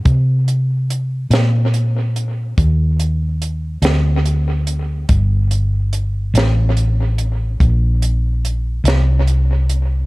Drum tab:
HH |xxxxxxxxxxxx|xxxxxxxxxxxx|
SD |---o-----o--|---o-----o--|
BD |o-----o-----|o-----o-----|